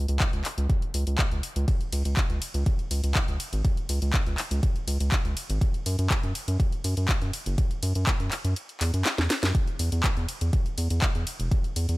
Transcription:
0.08 C#2, closed hi-hat
0.20 kick, clap, closed hi-hat
0.33 C#2, closed hi-hat
0.45 clap, open hi-hat
0.58 C#2, closed hi-hat
0.70 kick, closed hi-hat
0.82 closed hi-hat
0.94 C#2, open hi-hat
1.07 C#2, closed hi-hat
1.18 kick, clap, closed hi-hat
1.32 C#2, closed hi-hat
1.43 open hi-hat
1.56 C#2, closed hi-hat
1.68 kick, closed hi-hat, ride
1.81 closed hi-hat
1.92 C#2, open hi-hat, ride
2.05 C#2, closed hi-hat
2.17 kick, clap, closed hi-hat, ride
2.30 C#2, closed hi-hat
2.42 open hi-hat, ride
2.54 C#2, closed hi-hat
2.66 kick, closed hi-hat, ride
2.79 closed hi-hat
2.91 C#2, open hi-hat, ride
3.04 C#2, closed hi-hat
3.15 kick, clap, closed hi-hat, ride
3.28 C#2, closed hi-hat
3.40 open hi-hat, ride
3.53 G#1, closed hi-hat
3.65 kick, closed hi-hat, ride
3.77 closed hi-hat
3.89 C#2, open hi-hat, ride
4.02 C#2, closed hi-hat
4.13 kick, clap, closed hi-hat, ride
4.26 C#2, closed hi-hat
4.38 clap, open hi-hat, ride
4.51 C#2, closed hi-hat
4.63 kick, closed hi-hat, ride
4.76 closed hi-hat
4.87 C#2, open hi-hat, ride
5.00 C#2, closed hi-hat
5.12 kick, clap, closed hi-hat, ride
5.25 C#2, closed hi-hat
5.37 open hi-hat, ride
5.50 G#1, closed hi-hat
5.61 kick, closed hi-hat, ride
5.74 closed hi-hat
5.86 F#2, open hi-hat, ride
5.99 F#2, closed hi-hat
6.10 kick, clap, closed hi-hat, ride
6.23 F#2, closed hi-hat
6.35 open hi-hat, ride
6.48 F#2, closed hi-hat
6.60 kick, closed hi-hat, ride
6.72 closed hi-hat
6.84 F#2, open hi-hat, ride
6.97 F#2, closed hi-hat
7.08 kick, clap, closed hi-hat, ride
7.22 F#2, closed hi-hat
7.33 open hi-hat, ride
7.46 F#1, closed hi-hat
7.58 kick, closed hi-hat, ride
7.71 closed hi-hat
7.83 F#2, open hi-hat, ride
7.95 F#2, closed hi-hat
8.07 kick, clap, closed hi-hat, ride
8.20 F#2, closed hi-hat
8.31 clap, open hi-hat, ride
8.45 F#2, closed hi-hat
8.56 closed hi-hat, ride
8.69 closed hi-hat
8.81 E2, clap, open hi-hat, ride
8.94 F#2, closed hi-hat
9.05 snare, clap, closed hi-hat, ride
9.18 E2, snare, closed hi-hat
9.30 snare, open hi-hat, ride
9.43 F#2, snare, closed hi-hat
9.55 kick, closed hi-hat, ride
9.68 closed hi-hat
9.79 E2, open hi-hat, ride
9.92 E2, closed hi-hat
10.04 kick, clap, closed hi-hat, ride
10.17 E2, closed hi-hat
10.29 open hi-hat, ride
10.41 E2, closed hi-hat
10.53 kick, closed hi-hat, ride
10.66 closed hi-hat
10.78 E2, open hi-hat, ride
10.90 E2, closed hi-hat
11.02 kick, clap, closed hi-hat, ride
11.15 E2, closed hi-hat
11.27 open hi-hat, ride
11.40 E1, closed hi-hat
11.51 kick, closed hi-hat, ride
11.64 closed hi-hat
11.76 E2, open hi-hat, ride
11.89 E2, closed hi-hat

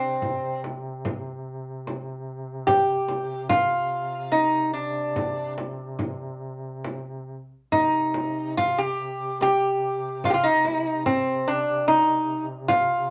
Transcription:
Already playing: C3 C4
0.22 frame drum
0.64 frame drum
1.05 frame drum
1.87 frame drum
2.67 G4, frame drum
3.08 frame drum
3.49 F4, frame drum
4.32 D#4, frame drum
4.73 D4
5.16 frame drum
5.58 frame drum
5.99 frame drum
6.84 frame drum
7.71 C3 D#4, frame drum
8.14 frame drum
8.57 F4, frame drum
8.78 G4
9.41 G4, frame drum
10.24 F4, frame drum
10.30 F4 G4
10.44 D#4
10.65 frame drum
11.06 C4, frame drum
11.48 D4
11.88 D#4, frame drum
12.68 F4, frame drum

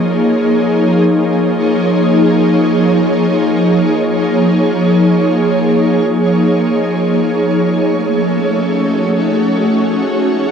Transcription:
Already playing: F3 A#3 D#4 G#4 C#5
7.63 A3
7.85 C#4
8.61 F#4

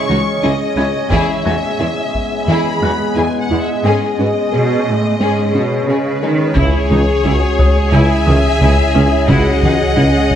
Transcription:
Already playing: G#3 C#4 G#4 C#5 G#5 C#6 D#6
0.09 C#2 E3 D#4 F#4
0.43 C#2 C#4 E4 G#4 D#5
0.77 C#2 C#4 E4 G#6
1.10 E2 E3 G#3 B3 E4 G#4 E5 G#5, taiko
1.45 E2 G#3 D#4 F#4 G#5 G#6
1.79 E2 E4 G#4
2.14 taiko
2.48 E2 E3 E4 G#4 B5
2.82 E2 G#3 D#4 F#4 F#6
3.16 E2 E4 G#4 G#5
3.40 F#5
3.50 E2 B3 E4
3.63 E5
3.84 G#2 G#3 C#4 G#4 C#5 D#5
4.19 G#2 B3 C#4 F#4
4.52 B2 C#4 G#4
4.87 A2
5.21 G#2 G#3 C#4 G#4
5.55 B2 B3 C#4 F#4
5.88 C#3 C#4 G#4 B4
6.23 D#3 G#3 D#4 G#4
6.56 C#2 C#3 G#3 C#4 E4 G#4 C#5, taiko
6.90 C#2 E3 D#4 G#4
7.24 C#2 C#4 E4 F#4
7.59 C#2 C#5 D#6
7.92 C#2 C#3 E4 E5 G#5
8.26 C#2 D#3 E3 C#4 D#6
8.60 C#2 C#4 E4
8.95 C#2 C#4
9.28 C#2 C#3 E4 F#4 D#5 F#5, taiko
9.63 C#2 E3 D#4
9.96 C#2 C#4 E4
10.31 C#2

